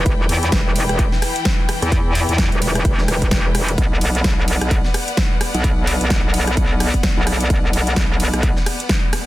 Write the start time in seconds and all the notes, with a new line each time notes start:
Already playing: E3 E4 B4 G5
0.06 E1, kick, closed hi-hat, ride
0.29 E2, open hi-hat, ride
0.43 closed hi-hat
0.52 E1, kick, snare, closed hi-hat, ride
0.76 open hi-hat, ride
0.89 E1, cross-stick, closed hi-hat
0.99 kick, closed hi-hat, ride
1.12 snare
1.22 cross-stick, open hi-hat, ride
1.36 closed hi-hat
1.45 kick, snare, closed hi-hat, ride
1.69 cross-stick, open hi-hat, ride
1.82 E2, closed hi-hat
1.92 kick, closed hi-hat, ride
2.15 open hi-hat, ride
2.29 E2, closed hi-hat
2.38 kick, snare, closed hi-hat, ride
2.52 E1, closed hi-hat
2.62 open hi-hat, ride
2.75 cross-stick, closed hi-hat
2.85 E1, kick, closed hi-hat, ride
2.98 snare
3.08 E1, cross-stick, open hi-hat, ride
3.22 kick, closed hi-hat
3.31 E1, kick, snare, closed hi-hat, ride
3.55 cross-stick, open hi-hat, ride
3.68 closed hi-hat
3.78 B1 B3 B4 D5 F#5, kick, closed hi-hat, ride
4.01 B1, open hi-hat, ride
4.15 closed hi-hat
4.24 B1, kick, snare, closed hi-hat, ride
4.48 open hi-hat, ride
4.61 B1, cross-stick, closed hi-hat
4.71 kick, closed hi-hat, ride
4.84 snare
4.94 cross-stick, open hi-hat, ride
5.08 closed hi-hat
5.17 kick, snare, closed hi-hat, ride
5.41 cross-stick, open hi-hat, ride
5.54 B1, closed hi-hat
5.64 kick, closed hi-hat, ride
5.87 open hi-hat, ride
6.01 B1, closed hi-hat
6.10 kick, snare, closed hi-hat, ride
6.24 B1
6.34 open hi-hat, ride
6.47 cross-stick, closed hi-hat
6.57 B1, kick, closed hi-hat, ride
6.80 cross-stick, open hi-hat, ride
6.94 kick, closed hi-hat
7.03 kick, snare, closed hi-hat, ride
7.17 B1
7.27 cross-stick, open hi-hat, ride
7.40 closed hi-hat
7.50 B1, kick, closed hi-hat, ride
7.73 B1, open hi-hat, ride
7.87 closed hi-hat
7.96 B1, kick, snare, closed hi-hat, ride
8.20 open hi-hat, ride
8.33 B1, cross-stick, closed hi-hat
8.43 kick, closed hi-hat, ride
8.57 snare
8.66 cross-stick, open hi-hat, ride
8.80 closed hi-hat
8.89 kick, snare, closed hi-hat, ride
9.13 cross-stick, open hi-hat, ride